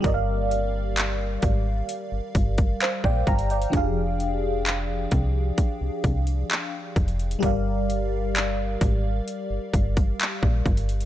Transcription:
<<
  \new Staff \with { instrumentName = "FM electric piano" } { \time 4/4 \key g \phrygian \tempo 4 = 65 << { r2. <c'' f''>16 <d'' g''>16 <f'' bes''>16 <d'' g''>16~ | <d'' g''>16 r2. r8. | r1 | } \\ { <g g' bes' d'' ees'' f''>1 | <f d' g' aes' f''>1 | <g g' bes' d'' f''>1 | } >> }
  \new Staff \with { instrumentName = "FM bass" } { \clef bass \time 4/4 \key g \phrygian g,,4. aes,,8 r16 g,,16 g,,8 r16 bes,,16 g,,8 | f,,4. c,8 r16 c,16 c,8 r8 f,,8 | g,,4. aes,,8 r16 g,,16 g,,8 r16 bes,,16 g,,8 | }
  \new DrumStaff \with { instrumentName = "Drums" } \drummode { \time 4/4 <hh bd>8 hh8 <hc hh>8 <hh bd>8 hh8 <hh bd>16 <hh bd>16 <hc hh>16 bd16 <hh bd>32 hh32 hh32 hh32 | <hh bd>8 hh8 <hc hh>8 <hh bd>8 <hh bd>8 <hh bd>16 hh16 <hc hh>8 <hh bd>32 hh32 hh32 hh32 | <hh bd>8 hh8 <hc hh>8 <hh bd>8 hh8 <hh bd>16 <hh bd>16 <hc hh>16 bd16 <hh bd>32 hh32 hh32 hh32 | }
>>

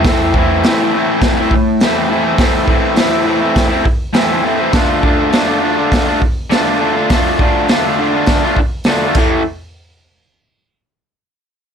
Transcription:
<<
  \new Staff \with { instrumentName = "Overdriven electric guitar" } { \time 4/4 \key a \minor \tempo 4 = 102 <a, e a c' e'>8 <e a c' e'>8 <a, e a c' e'>16 <a c' e'>16 <e a c' e'>16 <a c' e'>8 <a c' e'>8. <a, e a c' e'>16 <a c' e'>16 <e a c' e'>16 <a c' e'>16 | <a, e a c' e'>8 <e a c' e'>8 <a, e a c' e'>16 <a c' e'>16 <e a c' e'>16 <a c' e'>8 <a c' e'>8. <a, e a c' e'>16 <a c' e'>16 <e a c' e'>16 <a c' e'>16 | <d a d' f'>8 <d a d' f'>8 <d a d' f'>16 <a d' f'>16 <d a d' f'>16 <a d' f'>8 <a d' f'>8. <d a d' f'>16 <a d' f'>16 <d a d' f'>16 <a d' f'>16 | <d a d' f'>8 <d a d' f'>8 <d a d' f'>16 <a d' f'>16 <d a d' f'>16 <a d' f'>8 <a d' f'>8. <d a d' f'>16 <a d' f'>16 <a, e a>8 |
r1 | }
  \new DrumStaff \with { instrumentName = "Drums" } \drummode { \time 4/4 <hho bd sn>8 bd8 <hho sn>4 <hho bd sn>8 bd8 <hho sn>4 | <hho bd sn>8 bd8 <hho sn>4 <hho bd sn>8 bd8 <hho sn>4 | <hho bd sn>8 bd8 <hho sn>4 <hho bd sn>8 bd8 <hho sn>4 | <hho bd sn>8 bd8 <hho sn>4 <hho bd sn>8 bd8 <hho sn>8 <cymc bd>8 |
r4 r4 r4 r4 | }
>>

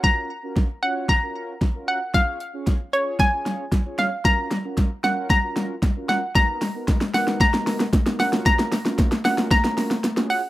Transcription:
<<
  \new Staff \with { instrumentName = "Synth pluck" } { \time 4/4 \key fis \major \tempo 4 = 114 ais''4. fis''8 ais''4. fis''8 | eis''4. cis''8 gis''4. eis''8 | ais''4. fis''8 ais''4. fis''8 | ais''4. fis''8 ais''4. fis''8 |
ais''4. fis''8 ais''4. fis''8 | }
  \new Staff \with { instrumentName = "Analog polysynth" } { \time 4/4 \key fis \major <cis' eis' fis' ais'>8 r16 <cis' eis' fis' ais'>8 r16 <cis' eis' fis' cis''>8 r16 <cis' eis' fis' ais'>8 r8 <cis' eis' fis' ais'>8 r16 | <cis' eis' gis' cis''>8 r16 <cis' eis' gis' cis''>8 r16 <cis' eis' gis' cis''>8 r16 <cis' eis' gis' cis''>8 r8 <cis' eis' gis' cis''>8 r16 | <cis' eis' fis' ais'>8 r16 <cis' eis' fis' ais'>8 r16 <cis' eis' fis' ais'>8 r16 <cis' eis' fis' ais'>8 r8 <cis' eis' fis' ais'>8 r16 | <b dis' fis' ais'>8 r16 <b dis' fis' ais'>8 r16 <b dis' fis' ais'>8 r16 <b dis' fis' ais'>8 r8 <b dis' fis' ais'>16 <cis' eis' fis' ais'>8~ |
<cis' eis' fis' ais'>8 r16 <cis' eis' fis' ais'>8 r16 <cis' eis' fis' ais'>8 r16 <cis' eis' fis' ais'>8 r8 <cis' eis' fis' gis'>8 r16 | }
  \new DrumStaff \with { instrumentName = "Drums" } \drummode { \time 4/4 <bd sn>4 <bd sn>4 <bd sn>4 <bd sn>4 | <hh bd sn>8 hh8 <hh bd sn>8 hh8 <hh bd sn>8 <hh sn>8 <hh bd sn>8 <hh sn>8 | <hh bd sn>8 <hh sn>8 <hh bd sn>8 <hh sn>8 <hh bd sn>8 <hh sn>8 <hh bd sn>8 <hh sn>8 | <hh bd sn>8 <hho sn>8 <hh bd sn>16 sn16 <hho sn>16 sn16 <hh bd sn>16 sn16 <hho sn>16 sn16 <hh bd sn>16 sn16 <hho sn>16 sn16 |
<hh bd sn>16 sn16 <hho sn>16 sn16 <hh bd sn>16 sn16 <hho sn>16 sn16 <hh bd sn>16 sn16 <hho sn>16 sn16 <hh sn>16 sn16 hho8 | }
>>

